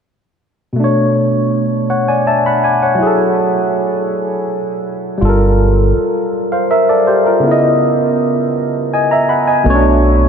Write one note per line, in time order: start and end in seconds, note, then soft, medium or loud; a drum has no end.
0.73 2.93 B2 medium
0.73 2.95 A3 soft
0.80 2.96 D4 soft
0.84 1.89 C#5 medium
1.90 2.07 C#5 soft
1.90 2.06 F#5 soft
2.08 2.25 D5 soft
2.08 2.25 G#5 soft
2.27 2.44 E5 soft
2.27 2.44 A5 medium
2.46 2.63 F#5 soft
2.46 2.62 B5 medium
2.64 2.81 D5 soft
2.64 2.81 G#5 soft
2.82 3.17 C#5 soft
2.82 3.17 F#5 soft
2.95 5.15 F#3 medium
2.95 5.17 E4 soft
3.02 5.19 G#4 medium
3.07 5.21 A4 medium
5.18 7.38 G3 medium
5.18 6.30 F4 medium
5.22 5.92 G1 medium
5.22 6.32 A4 medium
5.29 6.34 A#4 medium
5.97 muted fingered electric bass stroke soft
6.52 6.69 C5 soft
6.52 6.69 F5 soft
6.71 6.88 A#4 soft
6.71 6.88 E5 medium
6.89 7.06 A4 medium
6.89 7.06 D5 medium
7.07 7.25 G4 soft
7.07 7.24 C5 soft
7.26 7.61 F4 soft
7.26 7.61 A#4 soft
7.40 9.60 C#3 medium
7.40 9.62 B3 medium
7.47 9.63 E4 medium
7.51 8.56 D#5 medium
8.94 9.10 D#5 soft
8.94 9.10 G#5 medium
9.11 9.29 E5 soft
9.11 9.28 A#5 medium
9.29 9.47 F#5 soft
9.29 9.46 B5 soft
9.47 9.83 D#5 soft
9.47 9.82 G#5 soft
9.64 10.29 B1 medium
9.64 10.29 B2 medium
9.64 10.29 A3 medium
9.68 9.73 C#4 medium
9.68 10.29 C#5 medium
9.75 10.29 D4 medium